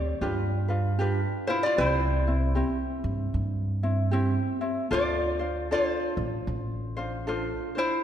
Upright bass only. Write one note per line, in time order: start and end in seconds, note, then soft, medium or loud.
0.00 0.11 D2 medium
0.21 1.23 G2 medium
1.78 2.60 C2 medium
3.04 3.24 G2 medium
3.34 4.36 G2 medium
4.91 5.73 D2 medium
6.17 6.37 A1 medium
6.47 7.50 A1 medium